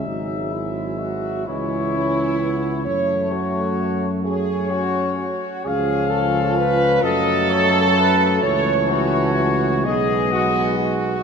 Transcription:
<<
  \new Staff \with { instrumentName = "Trumpet section" } { \time 6/8 \key fis \dorian \tempo 4. = 43 e''4. cis''4. | cis''4. cis''4. | eis''4. dis''8 cis''8 b'8 | \key a \lydian cis''4. dis''4. | }
  \new Staff \with { instrumentName = "French horn section" } { \time 6/8 \key fis \dorian dis'8 e'8 fis'8 e'4. | cis''8 fis'4 gis'8 fis'8 fis'8 | gis'8 a'8 b'8 a'4. | \key a \lydian cis''8 fis'4 gis'8 fis'8 fis'8 | }
  \new Staff \with { instrumentName = "Trombone section" } { \time 6/8 \key fis \dorian gis4. gis8 cis'8 b8 | a4. cis'4. | cis'4. a4. | \key a \lydian a4. b4. | }
  \new Staff \with { instrumentName = "Euphonium" } { \clef bass \time 6/8 \key fis \dorian fis4. e4. | a2~ a8 r8 | eis4. fis4. | \key a \lydian e4. gis4. | }
  \new Staff \with { instrumentName = "Tuba" } { \clef bass \time 6/8 \key fis \dorian gis,,4. cis,4. | fis,2~ fis,8 r8 | cis,4. fis,4. | \key a \lydian cis,4. b,,4. | }
>>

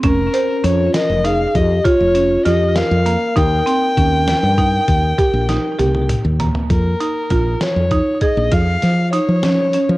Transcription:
<<
  \new Staff \with { instrumentName = "Violin" } { \time 11/8 \key ees \mixolydian \tempo 4 = 99 bes'4 des''8 ees''8 f''8 ees''8 des''4 ees''8 f''4 | g''1~ g''8 r4 | bes'4. des''4 ees''8 f''4 des''4. | }
  \new Staff \with { instrumentName = "Vibraphone" } { \time 11/8 \key ees \mixolydian des'4 f'8 bes'8 aes'8 g'8 f'4 g'8 bes'4 | bes'1~ bes'8 r4 | r1 r4. | }
  \new Staff \with { instrumentName = "Marimba" } { \time 11/8 \key ees \mixolydian des'8 c''8 des'4 ees'4 f'8 des'8 f'4 bes8 | ees'8 c'8 des'4 ees'4 g'8 ees'8 g'4 bes8 | r8 ees'8 f'4 ees'8 aes'8 f'4 ees'8 des'8 des'8 | }
  \new Staff \with { instrumentName = "Fretless electric bass" } { \clef bass \time 11/8 \key ees \mixolydian f,,8 r8 f,8 r16 f,,8. f,8 r16 f,,8. f,8. f,8 r16 | ees,8 r8 ees,8. g,8. ees,8 r16 bes,,8 r16 c,8. ees,8 r16 | f,8 r8 bes,,8 r16 f,8 r8 bes,,16 f,8 f8. f4 f16 | }
  \new DrumStaff \with { instrumentName = "Drums" } \drummode { \time 11/8 <hh bd>8 hh8 hh8 <hh sn>8 hh8 <hh bd>8 <hh bd>8 hh8 <hh sn>8 <hh sn>8 hh8 | <hh bd>8 hh8 <hh bd>8 <hh sn>8 <hh bd>8 <hh bd>8 <hh bd>8 <hh sn>8 <hh tommh>16 tommh16 <hh toml>8 <hh tomfh>16 tomfh16 | <hh bd>8 hh8 <hh bd>8 <hh sn>8 <hh bd>8 <hh bd>8 <hh bd sn>8 <hh sn>8 hh8 <hh sn>8 hh8 | }
>>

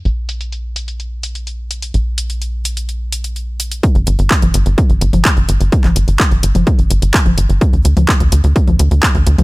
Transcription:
<<
  \new Staff \with { instrumentName = "Analog synth bass" } { \clef bass \time 4/4 \key g \minor \tempo 4 = 127 bes,,1 | bes,,1 | r16 g,,16 g,,16 g,,16 r16 g,,16 g,,16 g,,16 r16 g,,16 g,,16 g,,16 r16 g,,16 g,,16 g,,16 | r16 g,,16 g,,16 g,,16 r16 g,,16 g,,16 g,,16 r16 g,,16 g,,16 g,,16 r16 g,,16 g,,16 g,,16 |
r16 d,16 d,16 d,16 r16 d,16 d,16 d,16 r16 d,16 d,16 d,16 r16 d,16 d,16 d,16 | }
  \new DrumStaff \with { instrumentName = "Drums" } \drummode { \time 4/4 hh8 hh16 hh16 hh8 hh16 hh16 hh8 hh16 hh16 hh8 hh16 hh16 | hh8 hh16 hh16 hh8 hh16 hh16 hh8 hh16 hh16 hh8 hh16 hh16 | <hh bd>16 hh16 hh16 hh16 <hc hh bd>16 <hh toml>16 hh16 hh16 <hh bd>16 hh16 hh16 <hh toml>16 <hc hh bd>16 hh16 hh16 hh16 | <hh bd>16 <hc hh toml>16 hh16 hh16 <hc hh bd>16 hh16 hh16 <hh toml>16 <hh bd>16 hh16 hh16 hh16 <hc hh bd>16 <hh toml>16 hh16 hh16 |
<hh bd>16 hh16 hh16 <hh toml>16 <hc hh bd>16 hh16 hh16 hh16 <hh bd>16 <hh toml>16 hh16 hh16 <hc hh bd>16 hh16 hh16 <hh toml>16 | }
>>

